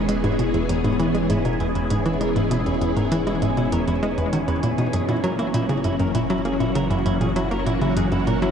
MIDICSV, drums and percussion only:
0, 0, Header, 1, 3, 480
1, 0, Start_track
1, 0, Tempo, 606061
1, 69, Time_signature, 4, 2, 24, 8
1, 6741, End_track
2, 0, Start_track
2, 0, Title_t, "Percussion blips"
2, 189, Note_on_c, 9, 63, 70
2, 268, Note_off_c, 9, 63, 0
2, 668, Note_on_c, 9, 63, 57
2, 747, Note_off_c, 9, 63, 0
2, 2589, Note_on_c, 9, 63, 53
2, 2668, Note_off_c, 9, 63, 0
2, 4029, Note_on_c, 9, 63, 65
2, 4108, Note_off_c, 9, 63, 0
2, 4509, Note_on_c, 9, 63, 52
2, 4588, Note_off_c, 9, 63, 0
2, 6429, Note_on_c, 9, 63, 51
2, 6508, Note_off_c, 9, 63, 0
2, 6741, End_track
3, 0, Start_track
3, 0, Title_t, "Drums"
3, 69, Note_on_c, 9, 42, 96
3, 148, Note_off_c, 9, 42, 0
3, 189, Note_on_c, 9, 42, 39
3, 268, Note_off_c, 9, 42, 0
3, 310, Note_on_c, 9, 42, 66
3, 389, Note_off_c, 9, 42, 0
3, 429, Note_on_c, 9, 42, 40
3, 508, Note_off_c, 9, 42, 0
3, 549, Note_on_c, 9, 42, 96
3, 628, Note_off_c, 9, 42, 0
3, 668, Note_on_c, 9, 42, 40
3, 747, Note_off_c, 9, 42, 0
3, 788, Note_on_c, 9, 42, 65
3, 867, Note_off_c, 9, 42, 0
3, 908, Note_on_c, 9, 42, 41
3, 987, Note_off_c, 9, 42, 0
3, 1027, Note_on_c, 9, 42, 95
3, 1107, Note_off_c, 9, 42, 0
3, 1148, Note_on_c, 9, 42, 42
3, 1228, Note_off_c, 9, 42, 0
3, 1268, Note_on_c, 9, 42, 37
3, 1347, Note_off_c, 9, 42, 0
3, 1388, Note_on_c, 9, 42, 41
3, 1467, Note_off_c, 9, 42, 0
3, 1508, Note_on_c, 9, 42, 94
3, 1587, Note_off_c, 9, 42, 0
3, 1628, Note_on_c, 9, 42, 38
3, 1707, Note_off_c, 9, 42, 0
3, 1749, Note_on_c, 9, 42, 66
3, 1828, Note_off_c, 9, 42, 0
3, 1870, Note_on_c, 9, 42, 41
3, 1949, Note_off_c, 9, 42, 0
3, 1989, Note_on_c, 9, 42, 95
3, 2068, Note_off_c, 9, 42, 0
3, 2109, Note_on_c, 9, 42, 39
3, 2188, Note_off_c, 9, 42, 0
3, 2229, Note_on_c, 9, 42, 68
3, 2309, Note_off_c, 9, 42, 0
3, 2349, Note_on_c, 9, 42, 39
3, 2428, Note_off_c, 9, 42, 0
3, 2469, Note_on_c, 9, 42, 93
3, 2548, Note_off_c, 9, 42, 0
3, 2589, Note_on_c, 9, 42, 41
3, 2668, Note_off_c, 9, 42, 0
3, 2709, Note_on_c, 9, 42, 65
3, 2788, Note_off_c, 9, 42, 0
3, 2829, Note_on_c, 9, 42, 39
3, 2908, Note_off_c, 9, 42, 0
3, 2949, Note_on_c, 9, 42, 93
3, 3028, Note_off_c, 9, 42, 0
3, 3070, Note_on_c, 9, 42, 41
3, 3149, Note_off_c, 9, 42, 0
3, 3190, Note_on_c, 9, 42, 37
3, 3269, Note_off_c, 9, 42, 0
3, 3310, Note_on_c, 9, 42, 40
3, 3389, Note_off_c, 9, 42, 0
3, 3429, Note_on_c, 9, 42, 92
3, 3508, Note_off_c, 9, 42, 0
3, 3549, Note_on_c, 9, 42, 38
3, 3628, Note_off_c, 9, 42, 0
3, 3668, Note_on_c, 9, 42, 66
3, 3747, Note_off_c, 9, 42, 0
3, 3788, Note_on_c, 9, 42, 41
3, 3867, Note_off_c, 9, 42, 0
3, 3908, Note_on_c, 9, 42, 92
3, 3987, Note_off_c, 9, 42, 0
3, 4029, Note_on_c, 9, 42, 38
3, 4108, Note_off_c, 9, 42, 0
3, 4149, Note_on_c, 9, 42, 64
3, 4228, Note_off_c, 9, 42, 0
3, 4269, Note_on_c, 9, 42, 39
3, 4348, Note_off_c, 9, 42, 0
3, 4389, Note_on_c, 9, 42, 88
3, 4468, Note_off_c, 9, 42, 0
3, 4509, Note_on_c, 9, 42, 38
3, 4588, Note_off_c, 9, 42, 0
3, 4628, Note_on_c, 9, 42, 64
3, 4707, Note_off_c, 9, 42, 0
3, 4749, Note_on_c, 9, 42, 38
3, 4828, Note_off_c, 9, 42, 0
3, 4869, Note_on_c, 9, 42, 93
3, 4949, Note_off_c, 9, 42, 0
3, 4989, Note_on_c, 9, 42, 41
3, 5069, Note_off_c, 9, 42, 0
3, 5110, Note_on_c, 9, 42, 37
3, 5189, Note_off_c, 9, 42, 0
3, 5231, Note_on_c, 9, 42, 40
3, 5310, Note_off_c, 9, 42, 0
3, 5350, Note_on_c, 9, 42, 92
3, 5429, Note_off_c, 9, 42, 0
3, 5470, Note_on_c, 9, 42, 38
3, 5549, Note_off_c, 9, 42, 0
3, 5590, Note_on_c, 9, 42, 62
3, 5669, Note_off_c, 9, 42, 0
3, 5710, Note_on_c, 9, 42, 39
3, 5790, Note_off_c, 9, 42, 0
3, 5830, Note_on_c, 9, 42, 88
3, 5909, Note_off_c, 9, 42, 0
3, 5950, Note_on_c, 9, 42, 36
3, 6029, Note_off_c, 9, 42, 0
3, 6071, Note_on_c, 9, 42, 64
3, 6150, Note_off_c, 9, 42, 0
3, 6189, Note_on_c, 9, 42, 37
3, 6269, Note_off_c, 9, 42, 0
3, 6309, Note_on_c, 9, 42, 88
3, 6388, Note_off_c, 9, 42, 0
3, 6429, Note_on_c, 9, 42, 38
3, 6508, Note_off_c, 9, 42, 0
3, 6550, Note_on_c, 9, 42, 61
3, 6630, Note_off_c, 9, 42, 0
3, 6669, Note_on_c, 9, 42, 38
3, 6741, Note_off_c, 9, 42, 0
3, 6741, End_track
0, 0, End_of_file